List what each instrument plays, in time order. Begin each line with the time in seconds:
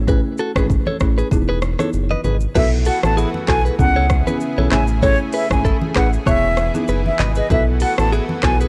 Already playing: analog synth bass A1
0.07 marimba A3 C#4 E4 G#4, clean electric guitar G#4 B4, kick, low conga, shaker
0.38 clean electric guitar F#4 A4, shaker
0.56 analog synth bass G#1, marimba A3 C#4 E4 G#4, clean electric guitar G#4 B4, kick, cross-stick, high conga, shaker
0.70 kick, low conga, shaker
0.87 clean electric guitar A4 C#5, high conga
1.00 analog synth bass A1, marimba A3 C#4 E4 G#4, kick, cross-stick, shaker
1.18 clean electric guitar G#4 B4, shaker
1.31 analog synth bass E1, marimba B3 D#4 E4 G#4, kick, low conga, shaker
1.49 clean electric guitar G#4 B4
1.62 cross-stick, shaker
1.79 marimba B3 D#4 E4 G#4, clean electric guitar A4 C#5, cross-stick, high conga, shaker
1.93 analog synth bass F#1, shaker
2.11 clean electric guitar B4 D#5, high conga
2.24 analog synth bass G#1, clean electric guitar G#4 B4, high conga, low conga, shaker
2.40 shaker
2.55 analog synth bass B1, analog synth pad E3 A3 B3 F#4, marimba B3 E4 F#4 A4, clean electric guitar F#4 B4, flute E5, kick, crash, low conga, shaker
2.85 clean electric guitar F#4 A4, flute F#5, open hi-hat, shaker
3.03 analog synth bass A1, marimba B3 E4 F#4 A4, flute A5, cross-stick, high conga, shaker
3.17 clean electric guitar E4 G#4, shaker
3.34 high conga
3.48 analog synth bass B1, marimba B3 E4 F#4 A4, clean electric guitar F#4 A4, flute G#5, kick, cross-stick, clap, shaker
3.65 clean electric guitar G#4 B4, shaker
3.79 analog synth bass C#2, analog synth pad C#3 B3 E4 G#4, marimba B3 C#4 E4 G#4, flute F#5, kick, low conga, shaker
3.96 clean electric guitar A4 C#5
4.10 kick, cross-stick, shaker
4.27 marimba B3 C#4 E4 G#4, clean electric guitar G#4 B4, high conga, shaker
4.40 shaker
4.57 analog synth bass B1, marimba B3 C#4 E4 G#4, clean electric guitar A4 C#5, high conga
4.71 analog synth bass A1, marimba A3 C#4 E4 G#4, analog synth pad A3, clean electric guitar C#5 E5, flute G#5, cross-stick, clap, high conga, low conga, shaker
4.88 shaker
5.03 marimba A3 C#4 E4 G#4, clean electric guitar A4 C#5, flute C#5, kick, low conga, shaker
5.33 clean electric guitar G#4 B4, flute E5, open hi-hat, shaker
5.50 analog synth bass G#1, marimba A3 C#4 E4 G#4, flute G#5, kick, cross-stick, high conga, shaker
5.65 clean electric guitar E4 A4, kick, shaker
5.82 high conga
5.95 analog synth bass A1, marimba A3 C#4 E4 G#4, clean electric guitar G#4 B4, flute F#5, kick, cross-stick, clap, shaker
6.13 shaker
6.26 analog synth bass E1, analog synth pad E3 B3 E4, marimba B3 E4 G#4, clean electric guitar G#4 C#5, flute E5, kick, low conga, shaker
6.57 cross-stick, shaker
6.74 marimba B3 D#4 E4 G#4, high conga, shaker
6.88 analog synth bass F#1, clean electric guitar G#4 B4, shaker
7.06 flute E5, high conga
7.19 analog synth bass G#1, clean electric guitar B4 D#5, clap, high conga, low conga, shaker
7.35 clean electric guitar G#4 B4, flute D#5, shaker
7.50 analog synth bass B1, analog synth pad E3 A3 F#4, marimba B3 E4 F#4 A4, clean electric guitar F#4 B4, flute E5, kick, low conga, shaker
7.80 clean electric guitar F#4 A4, flute F#5, open hi-hat, shaker
7.98 analog synth bass A1, marimba B3 E4 F#4 A4, flute A5, cross-stick, high conga, shaker
8.12 clean electric guitar E4 G#4, shaker
8.29 high conga
8.42 analog synth bass B1, marimba B3 E4 F#4 A4, clean electric guitar F#4 A4, flute G#5, kick, cross-stick, clap, shaker
8.60 clean electric guitar G#4 B4, shaker